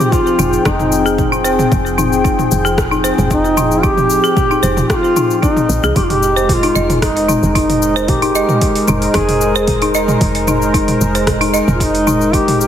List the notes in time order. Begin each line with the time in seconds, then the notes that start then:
Already playing: F3 C4 G4 G#4 G5
0.00 cabasa
0.12 F4, kick, cabasa
0.27 cabasa
0.39 F1 D#4, mid tom, cabasa
0.53 cabasa
0.65 F1 D#4, kick, cross-stick, cabasa
0.80 mid tom, cabasa
0.92 cabasa
1.06 G#4, cabasa
1.18 kick, mid tom, cabasa
1.32 D#4, cabasa
1.44 C5, cabasa
1.59 mid tom, cabasa
1.72 F1, kick, cabasa
1.86 cabasa
1.98 D#4, mid tom, cabasa
2.13 cabasa
2.24 D#4, kick, cabasa
2.39 mid tom, cabasa
2.52 F1, cabasa
2.65 G#4, cabasa
2.78 kick, cross-stick, mid tom, cabasa
2.91 D#4, cabasa
3.04 C5, cabasa
3.18 F1, mid tom, cabasa
3.31 D#4, kick, cabasa
3.45 cabasa
3.57 D#4, mid tom, cabasa
3.71 cabasa
3.83 D#4 G4, kick, cabasa
3.98 mid tom, cabasa
4.10 cabasa
4.24 G#4, cabasa
4.37 kick, mid tom, cabasa
4.51 D#4, cabasa
4.63 F1 C5, cabasa
4.77 mid tom, cabasa
4.90 G4, kick, cross-stick, cabasa
4.95 F4
5.04 cabasa
5.16 D#4, mid tom, cabasa
5.30 cabasa
5.42 D#4, kick, cabasa
5.57 mid tom, cabasa
5.69 A#1, cabasa
5.83 C2 G#4, cabasa
5.96 F1 G#3 D#4 G4, kick, open hi-hat, cabasa
6.03 D#4 F4
6.10 G4, mid tom, open hi-hat, cabasa
6.23 cabasa
6.36 A#4 C5, cabasa
6.49 G4, kick, mid tom, open hi-hat, cabasa
6.53 F4
6.63 D#4, open hi-hat, cabasa
6.75 F1 D#5, cabasa
6.90 mid tom, open hi-hat, cabasa
7.02 D#4, kick, cross-stick, open hi-hat, cabasa
7.17 open hi-hat, cabasa
7.28 D#4, mid tom, cabasa
7.43 F1, cabasa
7.55 D#4 F4, kick, open hi-hat, cabasa
7.70 mid tom, open hi-hat, cabasa
7.82 cabasa
7.96 C5, cabasa
8.08 G4, kick, mid tom, open hi-hat, cabasa
8.22 D#4, open hi-hat, cabasa
8.35 D#5, cabasa
8.49 mid tom, cabasa
8.61 kick, open hi-hat, cabasa
8.75 open hi-hat, cabasa
8.88 F1 D#4, mid tom, cabasa
9.02 open hi-hat, cabasa
9.14 F1 D#4 G#4, kick, cross-stick, open hi-hat, cabasa
9.29 mid tom, open hi-hat, cabasa
9.41 cabasa
9.55 C5, cabasa
9.68 kick, mid tom, open hi-hat, cabasa
9.82 D#4, open hi-hat, cabasa
9.95 D#5, cabasa
10.08 mid tom, cabasa
10.21 F1, kick, open hi-hat, cabasa
10.35 open hi-hat, cabasa
10.47 D#4, mid tom, cabasa
10.62 cabasa
10.74 D#4, kick, open hi-hat, cabasa
10.88 mid tom, open hi-hat, cabasa
11.01 F1, cabasa
11.15 C5, open hi-hat, cabasa
11.27 kick, cross-stick, mid tom, open hi-hat, cabasa
11.41 D#4, open hi-hat, cabasa
11.54 D#5, cabasa
11.68 F1, mid tom, cabasa
11.74 F4
11.79 D#4 F4, kick, open hi-hat, cabasa
11.95 open hi-hat, cabasa
12.07 D#4, mid tom, cabasa
12.21 cabasa
12.33 D#4 G4, kick, open hi-hat, cabasa
12.48 mid tom, open hi-hat, cabasa
12.60 G4, cabasa